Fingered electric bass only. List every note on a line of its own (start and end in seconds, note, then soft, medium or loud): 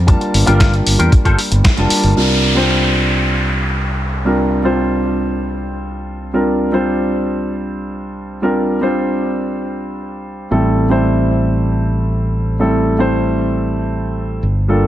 0.00 0.14 F2 medium
0.34 0.43 G1 medium
0.47 0.79 G1 loud
0.86 0.95 G1 medium
0.99 1.08 E2 medium
1.25 1.34 G1 medium
1.51 1.60 G1 loud
1.78 1.86 F1 medium
2.04 2.12 G1 loud
10.51 14.40 A1 medium
14.43 14.87 G1 medium